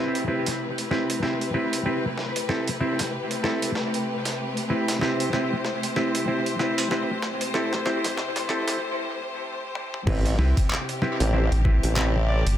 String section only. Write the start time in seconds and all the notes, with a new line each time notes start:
Already playing: C3 A3 G4 B4
5.02 C5
10.07 C3 C4 G4